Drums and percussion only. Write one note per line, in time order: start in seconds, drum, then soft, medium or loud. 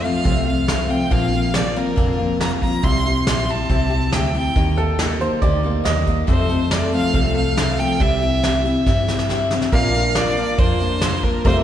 0.04 closed hi-hat medium
0.25 kick loud
0.25 closed hi-hat medium
0.68 snare loud
0.68 closed hi-hat medium
0.90 closed hi-hat medium
1.11 kick loud
1.11 closed hi-hat medium
1.33 closed hi-hat medium
1.54 snare loud
1.54 closed hi-hat medium
1.76 closed hi-hat medium
1.97 kick loud
1.97 closed hi-hat medium
2.41 snare loud
2.41 closed hi-hat medium
2.62 kick medium
2.62 closed hi-hat medium
2.84 kick loud
2.84 closed hi-hat medium
3.05 closed hi-hat medium
3.27 snare loud
3.27 closed hi-hat medium
3.48 closed hi-hat medium
3.70 kick loud
3.70 closed hi-hat medium
4.12 snare loud
4.12 closed hi-hat medium
4.34 closed hi-hat medium
4.56 kick loud
4.56 closed hi-hat medium
4.77 closed hi-hat medium
4.99 snare loud
4.99 closed hi-hat medium
5.21 closed hi-hat medium
5.42 kick loud
5.42 closed hi-hat medium
5.85 snare loud
5.85 closed hi-hat medium
6.07 kick medium
6.07 closed hi-hat medium
6.28 kick loud
6.28 closed hi-hat medium
6.49 closed hi-hat medium
6.71 snare loud
6.71 closed hi-hat medium
6.92 closed hi-hat medium
7.14 kick loud
7.14 closed hi-hat medium
7.57 snare loud
7.57 closed hi-hat medium
7.79 closed hi-hat medium
8.00 kick loud
8.00 closed hi-hat medium
8.22 closed hi-hat medium
8.44 snare loud
8.44 closed hi-hat medium
8.65 closed hi-hat medium
8.87 kick loud
8.87 snare medium
9.08 snare medium
9.19 snare medium
9.30 snare medium
9.51 snare medium
9.62 snare medium
9.72 kick loud
9.72 closed hi-hat medium
9.94 closed hi-hat medium
10.15 snare loud
10.15 closed hi-hat medium
10.37 closed hi-hat medium
10.58 kick loud
10.58 closed hi-hat medium
10.80 closed hi-hat medium
11.01 snare loud
11.01 closed hi-hat medium
11.23 kick medium
11.45 kick loud
11.45 closed hi-hat medium